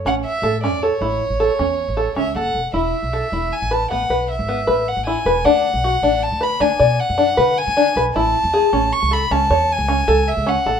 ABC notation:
X:1
M:7/4
L:1/16
Q:1/4=156
K:A
V:1 name="Violin"
f2 e4 d2 c12- c2 e2 f4 | e8 g2 a2 f4 e6 f2 g4 | f8 a2 b2 g4 f6 g4 z2 | a8 c'2 b2 a4 g6 e2 f4 |]
V:2 name="Five-string banjo"
C4 A2 C2 A2 E4 A2 C4 A2 C2 A4 | E4 A2 E4 B2 B,2 B4 B,2 B4 E2 B2 | D4 F2 D4 B2 D2 d4 D2 B4 D2 B2 | E4 G2 C4 A2 C2 c4 C2 A4 C2 A2 |]
V:3 name="Upright bass" clef=bass
A,,,2 z2 A,,3 E,,2 z A,,,2 z A,,,2 z E,,3 A,,,2 z C,,2 F,,,2 E,,,2 | E,,,2 z B,,,2 z E,,,2 z A,,,3 A,,,2 B,,,3 G,,,3 A,,,3 A,,,2 z E,,,2 | D,,3 B,,,3 A,,,3 D,,3 D,, z B,,2 z F,,3 D,3 D,2 z B,,,2 | A,,,2 z E,,2 z A,,,2 z C,,3 C,,2 E,,3 C,,3 C,,3 C,,2 z A,,,2 |]